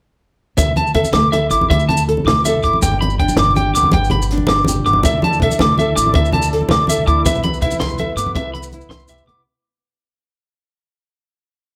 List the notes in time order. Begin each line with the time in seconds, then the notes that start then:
0.57 D2 D3 E5, kick, closed hi-hat, muted conga, maracas
0.66 low conga
0.76 A5, closed hi-hat, high conga
0.87 maracas
0.94 A4 E5, kick, closed hi-hat, low conga
1.04 high conga, low conga, maracas
1.13 D2 A3 D6, snare, closed hi-hat, muted conga
1.22 low conga
1.32 A4 E5, closed hi-hat, high conga, maracas
1.51 A1 E4 D6, closed hi-hat, maracas
1.61 high conga, low conga
1.70 D2 D3 E5, kick, closed hi-hat, muted conga, low conga
1.80 maracas
1.89 A5, closed hi-hat, high conga, low conga
1.97 maracas
2.08 A4, closed hi-hat
2.17 high conga
2.25 D2 A3 D6, snare, closed hi-hat, muted conga, low conga
2.45 A4 E5, closed hi-hat, high conga, maracas
2.54 low conga
2.63 G#1 E4 D6, kick, closed hi-hat, maracas
2.73 high conga
2.82 G1 G2 G5, kick, closed hi-hat, muted conga, maracas
2.92 low conga
3.01 B5, closed hi-hat, high conga
3.10 maracas
3.19 D4 G5, kick, closed hi-hat
3.29 high conga, low conga, maracas
3.36 G1 G3 D6, snare, closed hi-hat, muted conga
3.46 low conga
3.56 G4 G5, closed hi-hat, high conga, maracas
3.74 D2 B3 D6, closed hi-hat, maracas
3.83 high conga, low conga
3.92 G1 G2 G5, kick, closed hi-hat, muted conga, low conga
4.04 maracas
4.10 B5, closed hi-hat, high conga, low conga
4.22 maracas
4.30 D4, snare, closed hi-hat
4.38 high conga
4.47 G1 D6, snare, closed hi-hat, muted conga, low conga
4.51 G3
4.64 G4, closed hi-hat, high conga, maracas
4.76 low conga
4.85 G1 B3 D6, closed hi-hat, maracas
4.93 high conga
5.03 D2 D3 D4 E4 A4 E5, kick, closed hi-hat, muted conga, maracas
5.13 low conga
5.22 A5, closed hi-hat, high conga
5.33 maracas
5.40 A4 E5, kick, closed hi-hat, low conga
5.49 high conga, low conga, maracas
5.59 D2 A3 D6, snare, closed hi-hat, muted conga
5.68 low conga
5.78 A4 E5, closed hi-hat, high conga, maracas
5.96 A1 E4 D6, closed hi-hat, maracas
6.06 high conga
6.14 D2 D3 E5, kick, closed hi-hat, muted conga, low conga
6.25 maracas
6.33 A5, closed hi-hat, high conga, low conga
6.42 maracas
6.53 A4, snare, closed hi-hat
6.61 high conga
6.69 D2 A3 D6, snare, closed hi-hat, muted conga, low conga
6.87 A4 E5, closed hi-hat, high conga, maracas
6.98 low conga
7.07 D2 E4 D6, kick, closed hi-hat, maracas
7.25 C2 C3 B3 B4 E5, kick, closed hi-hat, muted conga, maracas
7.35 low conga
7.43 B5, closed hi-hat, high conga, maracas
7.54 maracas
7.62 E4 E5, kick, closed hi-hat, low conga, maracas
7.71 high conga, maracas
7.80 C2 E3 C6, snare, closed hi-hat, muted conga, low conga
7.89 low conga, maracas
7.98 A4 E5, closed hi-hat, high conga, maracas
8.10 low conga
8.16 G2 B3 D6, closed hi-hat, maracas
8.26 high conga, low conga
8.35 C2 C3 E5, kick, closed hi-hat, muted conga, low conga, maracas
8.54 B5, closed hi-hat, high conga
8.63 maracas
8.72 E4, closed hi-hat, high conga, maracas
8.81 maracas
8.89 C2 E3 C6, snare, closed hi-hat, high conga
9.00 maracas
9.08 G4 E5, closed hi-hat, low conga, maracas
9.26 C2 B3 D6, closed hi-hat, low conga